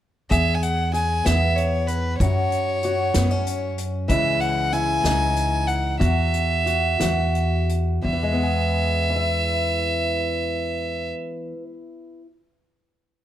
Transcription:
0.30 E2 G#4 E5, kick, closed hi-hat
0.55 G#5
0.63 F#5, closed hi-hat
0.93 G#4 G#5, closed hi-hat
1.25 E2 B3 E5, snare, closed hi-hat
1.56 C#5, closed hi-hat
1.87 B4, closed hi-hat
2.18 F#2 F#4 C#5, kick, closed hi-hat
2.52 closed hi-hat
2.83 F#4, closed hi-hat
3.14 F#2 B3, snare, closed hi-hat
3.31 C#4
3.47 closed hi-hat
3.78 closed hi-hat
4.08 C#2 C#3 E3 G#3 E4 E5, kick, closed hi-hat
4.40 F#5, closed hi-hat
4.72 E4 G#5, closed hi-hat
5.04 C#2 D#4, snare, closed hi-hat
5.36 closed hi-hat
5.67 F#5, closed hi-hat
5.99 E2 F#4 E5, kick, closed hi-hat
6.34 closed hi-hat
6.66 F#4, closed hi-hat
7.00 E2 F#4, snare, closed hi-hat
7.35 closed hi-hat
7.69 closed hi-hat
8.02 E2 E5
8.13 E3
8.23 G#3
8.33 B3
8.43 G#4
9.10 B4
9.16 E5

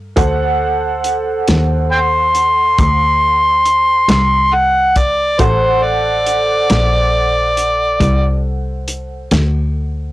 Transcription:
Already playing: G2 A4 A#4 F5
0.16 D2 A4 C5 F#5, kick, closed hi-hat
1.04 closed hi-hat
1.48 D#2, snare, closed hi-hat
1.92 G5 C6
2.35 closed hi-hat
2.78 D2, kick, closed hi-hat
3.66 closed hi-hat
4.09 C2, snare, closed hi-hat
4.54 F#5
4.96 D5, kick, closed hi-hat
5.39 A1 A4 C5 F#5, kick, closed hi-hat
5.83 D5
6.26 closed hi-hat
6.70 A#1, snare, closed hi-hat
7.57 closed hi-hat
8.00 C2, kick, closed hi-hat
8.88 closed hi-hat
9.31 D2, snare, closed hi-hat

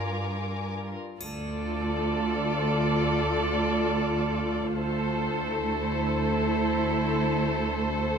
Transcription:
Already playing: G2 F4 A#4 G#5 D6
1.20 D2 A3 F4 A4 D5, triangle
4.73 D2 A3 A4 C5
5.61 E4

